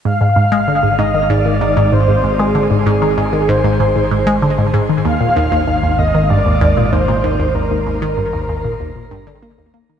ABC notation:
X:1
M:4/4
L:1/16
Q:1/4=96
K:Ablyd
V:1 name="Soft synth lead"
f6 e2 d4 c3 A | A6 c8 z2 | f6 e2 d4 c4 | B12 z4 |]
V:2 name="Synth arpeggio sound" clef=bass
A,, A,, A,, A, D, A,, A,, E, A,, E, A,, A,, A,, A,, A,, A, | D, A,, A,, E, A,, E, A,, A,, A,, A,, A,, A, D, A,, A,, E, | E,, B,, E,, E,, E,, E,, E,, E, G,, E,, E,, B,, E,, B,, E,, E,, | E,, E,, E,, E, G,, E,, E,, B,, E,, B,, G,, D, B, E,, B, E, |]
V:3 name="Synth drone" clef=bass
A,,,16- | A,,,16 | A,,,16- | A,,,16 |]